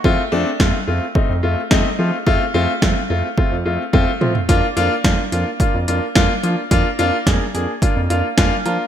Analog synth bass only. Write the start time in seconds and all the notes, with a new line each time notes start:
0.04 F2
0.32 F2
0.60 F2
0.88 F2
1.29 F2
1.43 F2
1.71 F2
1.99 F3
2.27 F2
2.54 F2
2.82 F2
3.10 F2
3.52 F2
3.65 F2
3.94 F2
4.21 F3
4.49 F2
4.77 F2
5.04 F2
5.32 F2
5.74 F2
5.88 F2
6.16 F2
6.43 F3
6.71 F2
6.99 F2
7.27 F2
7.54 F2
7.96 F2
8.10 F2
8.38 F2
8.65 F3